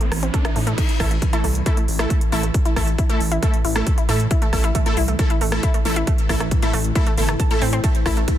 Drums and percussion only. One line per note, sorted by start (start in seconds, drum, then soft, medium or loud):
0.01 closed hi-hat soft
0.12 cross-stick medium
0.12 open hi-hat loud
0.23 closed hi-hat medium
0.34 kick loud
0.34 closed hi-hat medium
0.45 cross-stick loud
0.45 closed hi-hat medium
0.56 open hi-hat medium
0.67 closed hi-hat medium
0.78 kick loud
0.78 closed hi-hat loud
0.78 crash loud
0.89 closed hi-hat medium
1.00 kick medium
1.00 cross-stick medium
1.00 open hi-hat loud
1.11 closed hi-hat medium
1.22 kick loud
1.22 closed hi-hat medium
1.33 closed hi-hat medium
1.44 open hi-hat medium
1.55 closed hi-hat medium
1.66 kick loud
1.66 closed hi-hat medium
1.77 closed hi-hat medium
1.88 open hi-hat loud
1.99 cross-stick medium
1.99 closed hi-hat medium
2.10 kick loud
2.10 closed hi-hat loud
2.21 closed hi-hat medium
2.32 open hi-hat medium
2.43 closed hi-hat medium
2.54 kick loud
2.54 closed hi-hat loud
2.65 closed hi-hat medium
2.76 kick medium
2.76 cross-stick medium
2.76 open hi-hat loud
2.87 closed hi-hat medium
2.98 kick loud
2.98 closed hi-hat medium
3.10 closed hi-hat medium
3.21 open hi-hat loud
3.32 closed hi-hat medium
3.43 kick loud
3.43 closed hi-hat loud
3.54 closed hi-hat medium
3.65 open hi-hat loud
3.76 cross-stick medium
3.76 closed hi-hat medium
3.87 kick loud
3.87 closed hi-hat loud
3.98 closed hi-hat medium
4.09 open hi-hat loud
4.20 closed hi-hat medium
4.31 kick loud
4.31 closed hi-hat loud
4.42 closed hi-hat medium
4.53 kick medium
4.53 cross-stick medium
4.53 open hi-hat loud
4.64 closed hi-hat medium
4.75 kick loud
4.75 closed hi-hat medium
4.86 closed hi-hat medium
4.97 open hi-hat loud
5.08 closed hi-hat medium
5.19 kick loud
5.19 closed hi-hat loud
5.30 closed hi-hat medium
5.41 open hi-hat loud
5.52 cross-stick medium
5.52 closed hi-hat medium
5.63 kick loud
5.63 closed hi-hat loud
5.74 closed hi-hat medium
5.85 open hi-hat loud
5.96 closed hi-hat medium
6.07 kick loud
6.07 closed hi-hat medium
6.18 closed hi-hat soft
6.29 kick medium
6.29 cross-stick medium
6.29 open hi-hat loud
6.40 cross-stick medium
6.40 closed hi-hat medium
6.51 kick loud
6.51 closed hi-hat medium
6.62 closed hi-hat medium
6.73 open hi-hat loud
6.84 closed hi-hat medium
6.95 kick loud
6.95 closed hi-hat medium
7.07 closed hi-hat medium
7.18 open hi-hat loud
7.29 cross-stick medium
7.29 closed hi-hat medium
7.40 kick loud
7.40 closed hi-hat medium
7.51 closed hi-hat medium
7.62 open hi-hat loud
7.73 closed hi-hat medium
7.84 kick loud
7.84 closed hi-hat medium
7.84 ride medium
7.95 closed hi-hat soft
8.06 kick medium
8.06 cross-stick medium
8.06 open hi-hat loud
8.17 closed hi-hat medium
8.28 kick loud
8.28 closed hi-hat medium
8.28 ride medium